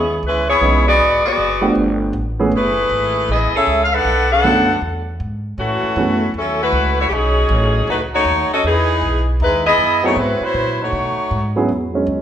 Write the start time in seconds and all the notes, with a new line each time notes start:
Already playing: D#2 B3 C#4 E4 G#4
0.23 C#2
0.27 G#3 C#4 E4 B4
0.50 B3 E4 G#4 C#5
0.61 B1 E3 G#3 B3 C#4 D#4
0.88 B3 F#4 G#4 D5
0.99 G#1
1.24 B3 F#4 G#4 D5, muted upright bass stroke
1.37 F#1
1.61 F3 A3 B3 D4 G4
1.75 G1
2.13 A1
2.39 E3 A3 B3 C#4 G#4
2.52 F#1 A3
2.56 E4 G#4 B4
2.89 G#1
3.28 A1 B3 E4 G#4 D#5
3.56 C#4 G#4 A4 E5
3.67 C#2
3.84 F5
3.94 D4 A4 B4 F#5
4.05 B1
4.32 D4 A4 B4 F#5
4.43 F#2 D3 A3 B3 C#4 F#4
4.82 E2
5.20 G#2
5.58 A2 E3 A3 C#4 F#4
5.83 muted upright bass stroke
5.96 F#2 E3 A3 B3 C#4 F#4
6.34 D#2 C#4 E4 A4
6.38 F#3
6.63 A3 E4 F#4 B4
6.72 C#2
7.00 A3 E4 F#4 C#5
7.09 B1 G4
7.13 F#3 C#4 D#4 G#4
7.49 A1
7.87 C#2 A3 D#4 F#4 B4
8.14 A3 D#4 F#4 C#5
8.25 D#2
8.49 C#4 A4, muted upright bass stroke
8.54 F#4 D#5
8.64 E2 E3 B3 D#4 G#4
9.01 B1
9.40 D#2 G#3 D#4 E4 B4
9.67 B3 E4 G#4 D#5
9.77 F#2
10.03 F#3 A3 B3 C4 D#4 E4 F#4 G#4 C#5
10.16 G#2 F#3 C4 E4 B4
10.40 F#3 E4 B4, muted upright bass stroke
10.45 C5
10.54 A#2
10.82 A3 D#4 F#4 C#5
10.92 B2
11.17 muted upright bass stroke
11.31 G#2
11.56 F#3 B3 C#4 E4 G#4
11.69 E2
11.94 F#3 G#3 C#4
12.07 C#2